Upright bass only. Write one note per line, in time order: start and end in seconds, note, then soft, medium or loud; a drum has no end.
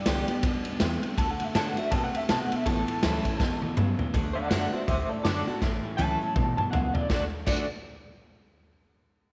0.06 0.25 C2 loud
0.43 0.62 D2 loud
0.65 0.78 E2 medium
0.81 0.99 E2 loud
1.03 muted upright bass stroke medium
1.18 1.36 D2 loud
1.40 1.53 F#2 loud
1.55 1.73 A2 medium
1.77 muted upright bass stroke medium
1.92 2.10 B2 loud
2.15 muted upright bass stroke medium
2.30 2.48 C3 loud
2.52 muted upright bass stroke medium
2.66 2.84 A1 loud
3.04 3.22 D2 loud
3.40 3.59 E2 loud
3.63 3.75 F#2 medium
3.78 3.96 G2 medium
4.00 muted upright bass stroke medium
4.14 4.32 D2 medium
4.51 4.69 F#2 medium
4.73 muted upright bass stroke medium
4.88 5.06 D2 medium
5.25 5.43 F#2 loud
5.48 muted upright bass stroke medium
5.62 5.80 A1 loud
5.99 6.17 C#2 medium
6.36 6.55 A1 medium
6.58 muted upright bass stroke medium
6.73 6.91 C#2 medium
6.95 muted upright bass stroke medium
7.10 7.23 D2 loud
7.47 7.68 D2 medium